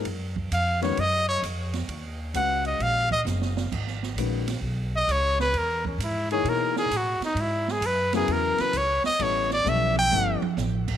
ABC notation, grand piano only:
X:1
M:4/4
L:1/8
Q:"Swing" 1/4=131
K:Dbdor
V:1 name="Grand piano"
z3 [E,A,DGc] z4 | z2 [A,DGc=f]3 z3 | z2 [E,A,DGc] z4 z | z3 [F,B,EAd]3 z2 |
z3 [D,G,CFB]3 z2 | [=G,=B,^C=E=A] z [G,B,CEA] z [G,B,CEA] z3 |]